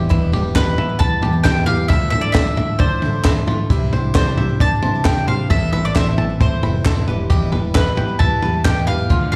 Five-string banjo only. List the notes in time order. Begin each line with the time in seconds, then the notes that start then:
Already playing: G4
0.10 E4
0.33 G4
0.55 B4
0.78 E5
1.00 B4
1.22 G4
1.45 E4
1.68 G4
1.90 E4
2.34 D5
2.57 E5
2.80 D5
3.25 E4
3.47 F4
3.70 E4
3.93 C5
4.15 D5
4.37 E5
4.61 D5
4.82 C5
5.05 E4
5.27 C5
5.50 A4
5.73 B4
5.96 C5
6.18 A5
6.41 C5
6.63 B5
6.86 A4
7.08 B4
7.30 G4
7.52 B4
7.74 E5
7.97 G5
8.19 E5
8.43 B4
8.65 G4
8.87 B4
9.10 F4